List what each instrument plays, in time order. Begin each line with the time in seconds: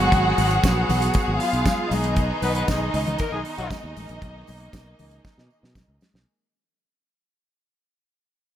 Already playing: string section F#3 B3 F#4 G#4 F#5
0.12 fingered electric bass G#1, kick, closed hi-hat, tambourine, muted conga
0.38 fingered electric bass G#1, open hi-hat, tambourine, muted conga
0.51 closed hi-hat
0.63 fingered electric bass A#1, kick, snare, closed hi-hat, tambourine, high conga
0.89 fingered electric bass B1, open hi-hat, tambourine, low conga
1.02 closed hi-hat
1.14 kick, closed hi-hat, tambourine, muted conga
1.28 fingered electric bass G#1
1.40 string section F4 F5, open hi-hat, tambourine
1.53 fingered electric bass B1, closed hi-hat
1.65 kick, snare, closed hi-hat, tambourine, high conga
1.91 fingered electric bass B1, string section D#3 D#4 D#5, open hi-hat, tambourine, high conga
2.04 closed hi-hat
2.16 kick, closed hi-hat, tambourine, muted conga
2.42 fingered electric bass B1, horn section B3 B4, open hi-hat, tambourine, muted conga
2.55 horn section B3 B4, closed hi-hat
2.68 fingered electric bass B1, horn section G#3 G#4, kick, snare, closed hi-hat, tambourine, high conga
2.94 fingered electric bass C#2, open hi-hat, tambourine
3.07 closed hi-hat, low conga
3.19 horn section A#3 A#4, kick, closed hi-hat, tambourine, muted conga
3.32 fingered electric bass B1, horn section G#3 G#4
3.45 open hi-hat
3.58 fingered electric bass B1, horn section F#3 F#4, closed hi-hat
3.71 kick, snare, closed hi-hat, tambourine, high conga
3.84 fingered electric bass D#2
3.96 fingered electric bass A1, string section A#3, open hi-hat, tambourine, high conga
4.09 fingered electric bass A#1, closed hi-hat
4.22 fingered electric bass B1, kick, closed hi-hat, muted conga
4.47 fingered electric bass B1, open hi-hat, tambourine, muted conga
4.60 closed hi-hat
4.73 fingered electric bass B1, kick, snare, closed hi-hat, tambourine, high conga
4.99 fingered electric bass C#2, open hi-hat, tambourine, low conga
5.11 closed hi-hat
5.25 kick, snare, tambourine, muted conga
5.38 fingered electric bass B2, snare
5.50 tambourine
5.63 fingered electric bass B2, snare
5.75 fingered electric bass B1, kick, snare, tambourine, high conga
5.88 fingered electric bass C#2
6.01 snare, tambourine, high conga
6.14 fingered electric bass B1, snare